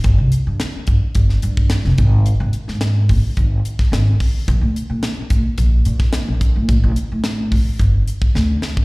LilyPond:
<<
  \new Staff \with { instrumentName = "Upright bass" } { \clef bass \time 4/4 \key c \mixolydian \tempo 4 = 108 g,,16 c,16 r16 g,16 r8 g,16 r16 g,,8 g,8. f,,16 aes,,8~ | aes,,16 aes,,16 r16 aes,8. aes,,16 r16 aes,,8 r8 aes,,8 r8 | bes,,16 d,16 r16 bes,16 r8 bes,16 r16 bes,,8 bes,8. bes,,8 bes,16 | a,,16 a,,16 r16 a,8. a,,16 r16 g,,8 r8 d,8 r8 | }
  \new DrumStaff \with { instrumentName = "Drums" } \drummode { \time 4/4 <hh bd>8 hh8 <hh sn>8 <hh bd>8 <hh bd>16 sn16 hh16 bd16 <hh sn>16 sn16 <hh bd>8 | hh8 hh16 sn16 <hh sn>8 <hho bd>8 <hh bd>8 hh16 <bd sn>16 <hh sn>8 <hho bd>8 | <hh bd>8 hh8 <hh sn>8 <hh bd>8 <hh bd>8 hh16 <bd sn>16 <hh sn>8 <hh bd>8 | <hh bd>8 hh8 <hh sn>8 <hho bd>8 <hh bd>8 hh16 bd16 sn8 sn16 bd16 | }
>>